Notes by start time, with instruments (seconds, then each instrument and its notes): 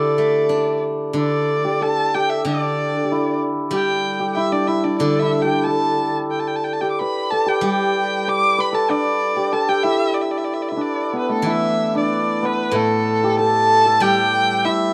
Already playing: guzheng D3, hammered dulcimer D4 E4 G4 A4, erhu D5
0.18 guzheng A3
0.49 guzheng D4
1.13 guzheng D3, hammered dulcimer D4
1.19 erhu D5
1.65 hammered dulcimer G4
1.81 hammered dulcimer A4, erhu A5
2.14 hammered dulcimer G4, erhu G5
2.30 erhu E5
2.45 guzheng D3, hammered dulcimer D4, erhu D5
3.04 hammered dulcimer G4
3.12 hammered dulcimer E4
3.71 guzheng G3, hammered dulcimer G4, erhu G5
4.20 hammered dulcimer G4
4.33 hammered dulcimer E4, erhu E5 G5
4.52 hammered dulcimer D4, erhu D5
4.67 hammered dulcimer E4, erhu E5
4.84 hammered dulcimer D4, erhu D5
4.99 guzheng D3, hammered dulcimer D4, erhu D5
5.20 hammered dulcimer E4, erhu E5
5.42 hammered dulcimer G4, erhu G5
5.64 hammered dulcimer A4, erhu A5
6.31 erhu G5
6.40 erhu A5
6.48 erhu G5
6.56 erhu A5
6.64 erhu G5
6.73 erhu A5
6.81 hammered dulcimer G4, erhu G5
6.91 erhu D6
6.99 hammered dulcimer B4, erhu B5
7.31 hammered dulcimer A4, erhu A5
7.46 hammered dulcimer G4, erhu G5
7.61 guzheng G3, hammered dulcimer G4
7.66 erhu G5
8.28 hammered dulcimer D5, erhu D6
8.58 hammered dulcimer B4, erhu B5
8.72 hammered dulcimer A4, erhu A5
8.89 hammered dulcimer D4, erhu D5
9.36 hammered dulcimer G4
9.53 hammered dulcimer A4, erhu A5
9.69 hammered dulcimer G4, erhu G5
9.83 hammered dulcimer E4, erhu E5
10.14 erhu D5
10.22 erhu E5
10.31 erhu D5
10.38 erhu E5
10.45 erhu D5
10.54 erhu E5
10.62 erhu D5
10.69 hammered dulcimer E4, erhu E5
10.77 hammered dulcimer D4
10.81 erhu D5
11.13 hammered dulcimer B3
11.19 erhu B4
11.29 hammered dulcimer A3, erhu A4
11.42 guzheng E3, hammered dulcimer E4
11.50 erhu E5
11.95 hammered dulcimer D4, erhu D5
12.42 hammered dulcimer B3, erhu B4
12.71 guzheng A2, hammered dulcimer A3, erhu A4
13.24 hammered dulcimer G4
13.39 hammered dulcimer A4, erhu A5
13.86 hammered dulcimer A4
14.00 guzheng G3, hammered dulcimer G4, erhu G5
14.65 hammered dulcimer E4, erhu E5